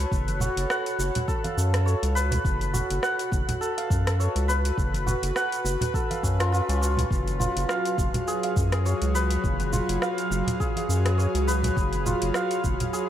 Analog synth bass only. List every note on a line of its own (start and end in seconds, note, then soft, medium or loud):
0.12 0.49 F#1 loud
0.57 0.66 F#1 loud
0.99 1.11 F#1 loud
1.57 1.95 F#2 loud
2.03 2.39 C#2 loud
2.45 2.82 F#1 loud
2.90 2.99 F#1 loud
3.32 3.44 F#1 loud
3.91 4.28 F#2 loud
4.36 4.72 C#2 loud
4.78 5.15 F#1 loud
5.23 5.32 F#1 medium
5.65 5.76 F#1 loud
6.23 6.61 F#2 loud
6.69 7.05 C#2 loud
7.11 7.48 F#1 medium
7.56 7.65 F#1 medium
7.98 8.10 F#1 loud
8.57 8.94 F#2 loud
9.02 9.38 C#2 medium
9.44 9.82 F#1 loud
9.89 9.98 F#1 medium
10.31 10.43 F#1 loud
10.89 11.27 F#2 loud
11.35 11.71 C#2 medium
11.77 12.14 F#1 loud
12.22 12.31 F#1 medium
12.64 12.76 F#1 loud